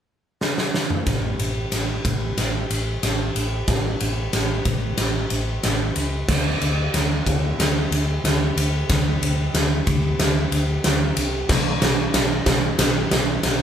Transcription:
0.41 snare
0.58 snare
0.74 snare
0.90 mid tom
1.06 A1, kick, snare, ride
1.39 A1, ride
1.72 A1, snare, ride
2.05 A1, kick, ride
2.37 A1, snare, ride
2.70 A1, ride
3.03 A1, snare, ride
3.35 A1, ride
3.68 A1, kick, snare, ride
4.00 A1, ride
4.33 A1, snare, ride
4.65 A1, kick, ride
4.98 A1, snare, ride
5.30 A1, ride
5.63 A1, snare, ride
5.96 C#2, ride
6.28 D2, kick, snare, crash
6.61 D2, ride
6.94 D2, snare, ride
7.26 D2, kick, ride
7.58 D2, snare, ride
7.91 D2, ride
8.24 D2, snare, ride
8.56 D2, ride
8.89 D2, kick, snare, ride
9.22 D2, ride
9.54 D2, snare, ride
9.87 D2, kick, ride
10.19 D2, snare, ride
10.52 D2, ride
10.84 D2, snare, ride
11.17 C2, ride
11.49 B1, kick, snare, crash
11.82 B1, snare, ride
12.14 B1, snare, ride
12.46 B1, kick, snare, ride
12.79 B1, snare, ride
13.11 B1, snare, ride
13.43 B1, snare, ride

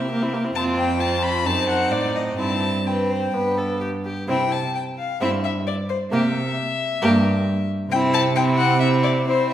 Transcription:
Already playing: C3 E5
0.00 C4 E4
0.11 A#3 G4
0.22 C4 E4
0.34 A#3 G4
0.44 C4 E4
0.55 F2 C4 F4 A5
0.78 G5
1.00 C4 F4 A5
1.23 B5
1.45 F#2 C4 D#4 A5
1.69 F#5
1.91 A2 D5
2.15 D#5
2.38 G2 C4 E4 A5
2.85 C4 B4 G5
3.10 C5
3.33 G2 B3 B4
3.57 A4
3.81 G4
4.05 G4
4.28 C3 C4 E4 G5
4.52 A5
4.75 G5
4.98 F5
5.21 G2 C4 E4 E5
5.44 E5
5.67 D5
5.89 C5
6.11 C3 A#3 G4 E5
7.01 G2 A#3 G4
7.90 C3 C4 E4 G5
8.14 A5
8.36 C4 E4 G5
8.57 F#5
8.80 C4 E4 E5
9.03 D5
9.27 C4 E4 C5
9.50 E5

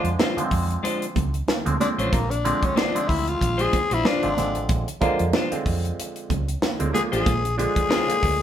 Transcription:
Already playing: D3 F3 G#3 D4
0.04 F2, closed hi-hat
0.19 G#3 D4 F4 C5, snare, high conga
0.37 D3 F3 G#3 B3, muted fingered electric bass stroke, closed hi-hat
0.44 C4
0.51 F2, kick, open hi-hat
0.71 closed hi-hat
0.83 G#3 D4 F4 C5, closed hi-hat
1.02 closed hi-hat
1.16 C#2, kick, closed hi-hat, muted conga, low conga
1.34 closed hi-hat
1.48 snare, high conga
1.65 D2 D3 F3 G#3 C4, closed hi-hat
1.80 D3 F3 G#3 C4 D4, snare, closed hi-hat, high conga
1.98 A1 G#3 C#4 D4 F4 C5, closed hi-hat
2.13 A#1 A#3, kick, closed hi-hat, muted conga
2.30 D4, closed hi-hat
2.45 D3 F3 G#3 C4, closed hi-hat
2.63 C#4, kick, closed hi-hat
2.76 G#3 D4 F4 C5, snare, high conga
2.95 D3 F3 G#3 C4, closed hi-hat
3.08 D2 E4, kick, open hi-hat
3.28 F4, closed hi-hat
3.41 A#1, kick, closed hi-hat
3.58 G#3 D4 F4 G#4 C5, closed hi-hat
3.73 kick, closed hi-hat, muted conga
3.90 A#1 G#3 D4 E4 F4 C5, closed hi-hat
4.05 G#3 D4 F4 C5, snare, high conga
4.23 G#1 D3 F3 G#3 C4, closed hi-hat
4.37 G#1 D3 F3 G#3 C4, snare, closed hi-hat, high conga
4.55 A1, closed hi-hat
4.69 A#1, kick, closed hi-hat, muted conga
4.88 closed hi-hat
5.01 D3 F3 G#3 A#3 D4 F4 C5, kick, closed hi-hat, muted conga
5.19 F2, closed hi-hat
5.33 G#3 D4 F4 C5, snare, high conga
5.52 D3 F3 G#3 C4, muted fingered electric bass stroke, closed hi-hat
5.66 F2, kick, open hi-hat
5.85 closed hi-hat
6.00 closed hi-hat
6.16 closed hi-hat
6.30 C#2, kick, closed hi-hat, muted conga, low conga
6.48 closed hi-hat
6.62 snare, high conga
6.79 D2 D3 F3 G#3 C4, closed hi-hat
6.93 D3 F3 G#3 A#3 G#4, snare, closed hi-hat, high conga
7.12 A1 G#3 D4 F4 G#4 C5, closed hi-hat
7.26 A#1, kick, closed hi-hat, muted conga
7.45 closed hi-hat
7.58 D3 F3 G#3 D4 G#4, closed hi-hat
7.76 kick, closed hi-hat
7.89 G#3 D4 F4 C5, snare, high conga
8.08 D3 F3 G#3 A#3, closed hi-hat
8.23 D2, kick, open hi-hat

